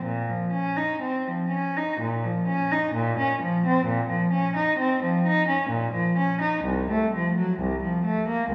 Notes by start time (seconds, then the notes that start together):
0.04 A#2
0.29 F3
0.53 C#4
0.77 D#4
1.02 C4
1.27 F3
1.50 C#4
1.77 D#4
2.01 A#2
2.24 F3
2.48 C#4
2.71 D#4
2.94 A#2
3.19 C#4
3.42 F3
3.66 C4
3.86 A#2
4.09 F3
4.33 C#4
4.56 D#4
4.79 C4
5.03 F3
5.27 D#4
5.48 C#4
5.70 A#2
5.93 F3
6.18 C#4
6.41 D#4
6.64 C2
6.91 A3
7.15 F3
7.38 F#3
7.60 C2
7.83 F3
8.05 A3
8.28 A#3
8.50 C#2